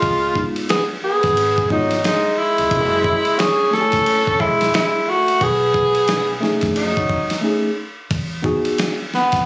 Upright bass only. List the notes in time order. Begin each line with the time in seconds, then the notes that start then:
0.03 C#2
1.24 G#1
2.58 C#2
2.71 F#1
4.28 muted upright bass stroke
4.40 E1
5.41 B1
6.63 F#1
8.11 E2